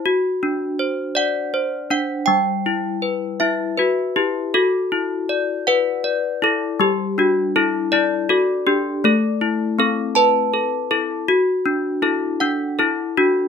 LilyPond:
\new Staff \with { instrumentName = "Handbells" } { \time 6/8 \key d \mixolydian \tempo 4. = 53 << { r4. d''4 fis''8 | g''4. e'8 fis'8 g'8 | a'4. b'4 a'8 | g'8 fis'8 e'8 e'8 fis'8 g'8 |
a'4 a'8 b'4 a'8 | fis'4 e'8 d'8 e'8 fis'8 | } \\ { fis'8 d'8 c''8 fis''8 c''8 d'8 | g8 e'8 b'8 e''8 b'8 e'8 | fis'8 e'8 d''8 fis''8 d''8 e'8 | g8 d'8 a'8 d''8 a'8 d'8 |
a8 e'8 c'8 a''8 a'8 e'8 | r8 d'8 a'8 fis''8 a'8 d'8 | } >> }